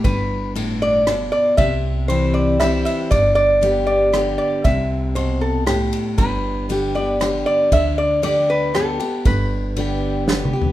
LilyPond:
<<
  \new Staff \with { instrumentName = "Resonator guitar played with a steel bar" } { \time 3/4 \key g \mixolydian \tempo 4 = 117 b'4 r8 d''4 d''8 | e''4 c''8 d''8 e''8 e''8 | d''8 d''4 d''4 d''8 | e''4 c''8 a'8 g'4 |
b'4 r8 d''4 d''8 | e''8 d''8 d''8 b'8 a'4 | b'2 r4 | }
  \new Staff \with { instrumentName = "Steel-string acoustic guitar" } { \clef bass \time 3/4 \key g \mixolydian << { r2. | r4 <e g c' e'>4 <e g c' e'>4 | r4 <d g b g'>4 <d g b g'>4 | r2. |
r4 <d g b g'>8 <b g'>8 <d g b g'>4 | r4 <d g b g'>4 <d g b g'>8 <b g'>8 | r4 <d g b g'>4 <d g b g'>8 <b g'>8 | } \\ { g,4 a,4 b,4 | c2 r4 | g,2 r4 | c4 b,4 a,4 |
g,2 r4 | d2 r4 | g,2 r4 | } >> }
  \new Staff \with { instrumentName = "Upright bass" } { \clef bass \time 3/4 \key g \mixolydian g,,2. | c,2. | g,,2. | c,2. |
g,,2. | d,2. | g,,2. | }
  \new DrumStaff \with { instrumentName = "Drums" } \drummode { \time 3/4 <bd cymr>4 cymr4 <cymr ss>4 | <bd cymr>4 cymr4 <cymr ss>8 cymr8 | <bd cymr>4 cymr4 <cymr ss>4 | <bd cymr>4 cymr4 <cymr ss>8 cymr8 |
<bd cymr>4 cymr4 <cymr ss>4 | <bd cymr>4 cymr4 <cymr ss>8 cymr8 | <bd cymr>4 cymr4 \tuplet 3/2 { sn8 toml8 tomfh8 } | }
>>